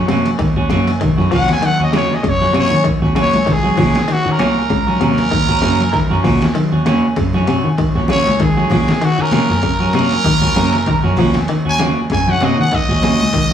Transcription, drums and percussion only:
0.09 ride bell medium
0.09 low conga medium
0.25 ride bell soft
0.25 high conga medium
0.39 kick medium
0.39 ride bell medium
0.56 kick medium
0.70 snare soft
0.70 ride bell medium
0.70 high conga loud
0.87 ride bell medium
0.87 high conga medium
1.01 kick medium
1.01 ride bell medium
1.01 low conga medium
1.18 snare soft
1.18 high conga medium
1.32 kick medium
1.32 open hi-hat medium
1.32 low conga medium
1.48 snare medium
1.48 ride bell medium
1.63 ride bell medium
1.63 high conga medium
1.93 snare medium
1.93 ride bell medium
1.93 high conga loud
2.11 snare soft
2.24 kick medium
2.24 ride bell medium
2.41 snare soft
2.41 high conga medium
2.54 ride bell medium
2.54 low conga medium
2.72 high conga medium
2.85 kick medium
2.85 ride bell medium
3.02 kick medium
3.02 snare soft
3.16 ride bell medium
3.16 high conga loud
3.33 snare soft
3.33 ride bell medium
3.33 high conga medium
3.47 kick medium
3.47 snare soft
3.47 ride bell medium
3.47 low conga medium
3.64 snare soft
3.64 high conga medium
3.77 kick medium
3.77 open hi-hat medium
3.77 low conga medium
3.95 snare medium
3.95 ride bell medium
4.08 ride bell medium
4.39 snare medium
4.39 ride bell soft
4.39 high conga loud
4.70 kick medium
4.70 ride bell soft
4.88 high conga medium
5.01 ride bell medium
5.01 low conga medium
5.18 ride bell soft
5.18 high conga medium
5.31 kick medium
5.31 ride bell medium
5.49 kick medium
5.63 ride bell medium
5.63 high conga loud
5.80 ride bell soft
5.80 high conga medium
5.93 kick medium
5.93 snare soft
5.93 ride bell medium
6.11 snare soft
6.11 high conga medium
6.24 kick medium
6.24 snare soft
6.24 open hi-hat medium
6.24 low conga medium
6.42 snare medium
6.42 ride bell soft
6.55 ride bell medium
6.55 high conga medium
6.86 snare medium
6.86 ride bell medium
6.86 high conga loud
7.16 kick medium
7.16 ride bell medium
7.33 snare soft
7.33 high conga medium
7.47 ride bell medium
7.47 low conga medium
7.78 kick medium
7.78 ride bell medium
7.95 kick medium
7.95 snare soft
8.08 snare soft
8.08 ride bell medium
8.08 high conga loud
8.26 snare soft
8.26 ride bell medium
8.40 kick medium
8.40 ride bell medium
8.56 snare soft
8.56 high conga medium
8.70 kick medium
8.70 snare soft
8.70 open hi-hat medium
8.70 low conga medium
8.88 snare medium
8.88 ride bell medium
9.02 ride bell medium
9.31 snare medium
9.31 ride bell medium
9.31 high conga loud
9.31 low conga medium
9.50 snare soft
9.63 kick medium
9.63 ride bell medium
9.80 high conga medium
9.93 ride bell medium
9.93 low conga medium
10.11 ride bell medium
10.11 high conga medium
10.24 kick loud
10.24 ride bell medium
10.42 kick medium
10.55 ride bell medium
10.55 high conga loud
10.73 snare soft
10.73 ride bell medium
10.86 kick medium
10.86 ride bell medium
10.86 low conga medium
11.04 snare soft
11.04 high conga medium
11.16 kick medium
11.16 open hi-hat medium
11.16 low conga medium
11.34 snare medium
11.34 ride bell medium
11.48 ride bell medium
11.79 snare medium
11.79 ride bell soft
11.79 high conga loud
12.10 kick medium
12.10 ride bell medium
12.27 snare soft
12.27 high conga medium
12.41 snare soft
12.41 ride bell soft
12.41 low conga medium
12.72 kick medium
12.72 ride bell medium
12.89 kick medium
12.89 snare soft
13.02 snare soft
13.02 ride bell medium
13.02 high conga loud
13.20 ride bell medium
13.33 kick medium
13.33 ride bell medium
13.33 low conga medium
13.50 high conga medium

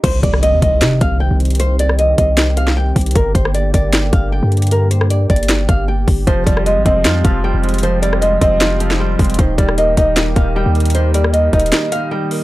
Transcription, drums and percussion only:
0.04 kick loud
0.04 closed hi-hat medium
0.04 crash loud
0.23 kick loud
0.23 closed hi-hat medium
0.34 cross-stick loud
0.43 closed hi-hat medium
0.62 kick medium
0.62 closed hi-hat medium
0.81 snare loud
0.81 closed hi-hat medium
1.01 kick loud
1.01 closed hi-hat medium
1.40 closed hi-hat soft
1.45 closed hi-hat medium
1.50 closed hi-hat medium
1.55 closed hi-hat medium
1.60 closed hi-hat medium
1.79 closed hi-hat medium
1.89 cross-stick medium
1.99 closed hi-hat medium
2.18 kick medium
2.18 closed hi-hat medium
2.37 snare loud
2.37 closed hi-hat medium
2.57 closed hi-hat medium
2.67 snare medium
2.96 kick loud
2.96 closed hi-hat soft
2.96 open hi-hat medium
3.01 closed hi-hat medium
3.06 closed hi-hat medium
3.11 closed hi-hat medium
3.15 kick loud
3.15 closed hi-hat medium
3.35 kick loud
3.35 closed hi-hat medium
3.45 cross-stick loud
3.54 closed hi-hat medium
3.74 kick medium
3.74 closed hi-hat medium
3.93 snare loud
3.93 closed hi-hat medium
4.13 kick loud
4.13 closed hi-hat medium
4.52 closed hi-hat soft
4.57 closed hi-hat medium
4.62 closed hi-hat medium
4.67 closed hi-hat medium
4.71 closed hi-hat medium
4.91 closed hi-hat medium
5.01 cross-stick loud
5.10 closed hi-hat medium
5.30 kick medium
5.30 closed hi-hat soft
5.36 closed hi-hat medium
5.43 closed hi-hat medium
5.49 snare loud
5.49 closed hi-hat medium
5.69 kick loud
5.69 closed hi-hat medium
6.08 kick loud
6.08 open hi-hat medium
6.27 kick loud
6.27 closed hi-hat medium
6.47 kick loud
6.47 closed hi-hat medium
6.57 cross-stick loud
6.66 closed hi-hat medium
6.86 kick medium
6.86 closed hi-hat medium
7.05 snare loud
7.05 closed hi-hat medium
7.25 kick loud
7.25 closed hi-hat medium
7.64 closed hi-hat soft
7.69 closed hi-hat medium
7.74 closed hi-hat medium
7.78 closed hi-hat medium
7.83 closed hi-hat medium
8.03 closed hi-hat medium
8.13 cross-stick loud
8.22 closed hi-hat medium
8.41 kick medium
8.41 closed hi-hat medium
8.61 snare loud
8.61 closed hi-hat medium
8.80 closed hi-hat medium
8.91 snare medium
9.19 kick loud
9.19 closed hi-hat soft
9.19 open hi-hat medium
9.24 closed hi-hat medium
9.30 closed hi-hat medium
9.34 closed hi-hat medium
9.39 kick loud
9.39 closed hi-hat medium
9.58 kick loud
9.58 closed hi-hat medium
9.69 cross-stick loud
9.78 closed hi-hat medium
9.97 kick medium
9.97 closed hi-hat medium
10.16 snare loud
10.16 closed hi-hat medium
10.36 kick loud
10.36 closed hi-hat medium
10.75 closed hi-hat soft
10.80 closed hi-hat medium
10.85 closed hi-hat medium
10.90 closed hi-hat medium
10.95 closed hi-hat medium
11.14 closed hi-hat medium
11.24 cross-stick loud
11.34 closed hi-hat medium
11.53 kick medium
11.53 closed hi-hat soft
11.60 closed hi-hat medium
11.66 closed hi-hat medium
11.72 snare loud
11.72 closed hi-hat medium
11.92 closed hi-hat medium
12.31 open hi-hat medium

